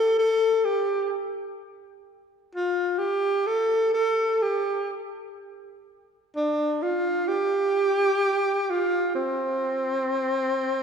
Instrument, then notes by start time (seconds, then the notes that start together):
alto saxophone
Already playing: A4
0.19 A4
0.65 G4
2.55 F4
2.99 G4
3.47 A4
3.94 A4
4.42 G4
6.36 D4
6.82 F4
7.28 G4
8.70 F4
9.15 C4